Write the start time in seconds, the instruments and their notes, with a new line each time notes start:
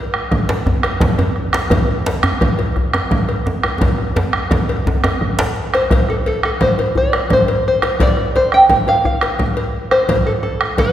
0.14 bombo rim
0.31 bombo rim, bombo low, djembe slap
0.49 cowbell, djembe slap, djembe tone
0.66 bombo rim, djembe slap, djembe bass
0.83 bombo rim, cowbell, djembe slap
1.00 bombo low, djembe slap
1.18 bombo rim, cowbell, djembe bass
1.36 bombo rim, djembe slap
1.53 bombo rim, cowbell, djembe slap, djembe tone
1.70 bombo low, cowbell, djembe slap, djembe bass
2.06 cowbell, djembe slap
2.23 bombo rim, djembe bass
2.41 bombo rim, bombo low, cowbell, djembe slap
2.59 cowbell, djembe slap, djembe tone
2.76 bombo rim, djembe slap, djembe bass
2.93 bombo rim, cowbell, djembe tone
3.11 bombo low, djembe slap
3.29 bombo rim, cowbell
3.46 bombo rim, djembe slap, djembe tone
3.63 bombo rim, cowbell, djembe tone
3.81 bombo low, cowbell, djembe slap, djembe tone, djembe bass
3.98 bombo rim
4.16 cowbell, djembe slap, djembe tone
4.33 bombo rim, djembe slap
4.51 bombo rim, bombo low, cowbell, djembe slap, djembe tone
4.69 cowbell, djembe slap, djembe tone
4.87 djembe slap, djembe tone, djembe bass
5.04 bombo rim, cowbell, djembe slap, djembe tone
5.21 bombo rim, bombo low, djembe bass
5.39 cowbell, djembe slap, djembe bass
5.56 djembe slap
5.74 five-string banjo C5, bombo rim, cowbell, djembe slap
5.90 bombo rim, bombo low, cowbell, djembe slap, djembe bass
6.09 five-string banjo A4, bombo rim, djembe slap
6.26 five-string banjo A4, cowbell, djembe slap
6.43 five-string banjo A4, bombo rim
6.61 five-string banjo C5, bombo low, cowbell, djembe slap
6.78 cowbell, djembe tone
6.95 five-string banjo D5, djembe bass
7.13 bombo rim, cowbell
7.30 five-string banjo C5, bombo rim, bombo low, djembe slap
7.48 cowbell
7.68 five-string banjo C5
7.82 bombo rim, cowbell, djembe tone
8.00 five-string banjo D5, bombo rim, bombo low, cowbell, djembe slap, djembe bass
8.17 bombo rim, djembe slap
8.35 five-string banjo C5, cowbell, djembe slap
8.52 five-string banjo G5, bombo rim
8.69 bombo low, cowbell, djembe slap
8.87 five-string banjo F5, cowbell, djembe tone
9.05 five-string banjo F5, djembe bass
9.21 bombo rim, cowbell
9.39 bombo rim, bombo low, djembe slap
9.57 cowbell
9.91 five-string banjo C5, bombo rim, cowbell, djembe tone
10.09 bombo rim, bombo low, cowbell, djembe slap, djembe bass
10.26 five-string banjo A4, bombo rim, djembe slap
10.43 five-string banjo A4, djembe slap
10.61 bombo rim
10.78 five-string banjo C5, bombo low, cowbell, djembe slap